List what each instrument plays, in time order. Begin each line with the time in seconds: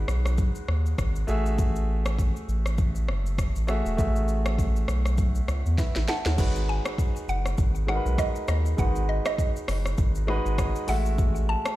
Already playing: grand piano G#3 D#4 F#4 B4
0.08 analog synth bass B1, cross-stick, shaker
0.26 cross-stick, shaker
0.38 kick, shaker
0.55 shaker
0.68 analog synth bass D#2, cross-stick
0.86 shaker
0.98 analog synth bass G#1, kick, cross-stick, shaker
1.16 shaker
1.27 analog synth bass A1, grand piano A3 F#4 G#4 E5, shaker
1.46 shaker
1.58 kick, shaker
1.76 shaker
2.06 cross-stick, shaker
2.19 kick, shaker
2.36 shaker
2.48 analog synth bass A1, shaker
2.66 cross-stick, shaker
2.78 kick, shaker
2.95 shaker
3.08 analog synth bass F#1, cross-stick
3.26 shaker
3.38 kick, cross-stick, shaker
3.56 analog synth bass A1, shaker
3.67 grand piano A3 F#4 G#4 E5, cross-stick, shaker
3.86 analog synth bass E1, shaker
3.97 analog synth bass A1, grand piano A3 F#4 G#4 E5, kick, shaker
4.16 shaker
4.28 shaker
4.46 cross-stick, shaker
4.58 kick, shaker
4.76 shaker
4.88 analog synth bass B1, cross-stick, shaker
5.05 cross-stick, shaker
5.18 kick, shaker
5.35 shaker
5.48 analog synth bass C#2, cross-stick, shaker
5.66 analog synth bass E2, shaker
5.78 grand piano B4 E5, kick, snare, shaker
5.95 analog synth bass A1, snare, shaker
6.08 grand piano E5 A5, synth pluck F#5, snare, shaker
6.26 analog synth bass D#2, grand piano C#5 F#5, snare, shaker
6.37 analog synth bass G#1, grand piano G#3 D#4 F#4 B4, kick, crash, shaker
6.56 shaker
6.69 synth pluck G#5
6.85 cross-stick, shaker
6.98 kick, shaker
7.16 shaker
7.28 analog synth bass F#1, synth pluck F#5, shaker
7.46 cross-stick, shaker
7.58 analog synth bass G#1, kick, shaker
7.75 shaker
7.87 grand piano G#3 D#4 F#4 A#4, synth pluck F#5, cross-stick
7.96 grand piano B4
8.06 analog synth bass B1, shaker
8.18 synth pluck D#5, kick, cross-stick, shaker
8.36 shaker
8.48 analog synth bass D#2, synth pluck D#5, cross-stick, shaker
8.66 shaker
8.77 analog synth bass G#1, grand piano G#3 D#4 F#4 B4, synth pluck F#5, kick, shaker
8.96 shaker
9.09 synth pluck D#5
9.25 synth pluck D#5, cross-stick, shaker
9.38 kick, shaker
9.56 shaker
9.68 analog synth bass F#1, cross-stick, open hi-hat, shaker
9.86 cross-stick, shaker
9.98 analog synth bass G#1, kick, shaker
10.15 shaker
10.27 grand piano G#3 D#4 F#4 B4, cross-stick
10.46 analog synth bass G#1, shaker
10.58 kick, cross-stick, shaker
10.76 shaker
10.87 analog synth bass A1, grand piano G#3 A3 F#4 E5, synth pluck F#5, open hi-hat, shaker
11.06 shaker
11.18 kick, shaker
11.36 shaker
11.49 synth pluck A5
11.65 cross-stick, shaker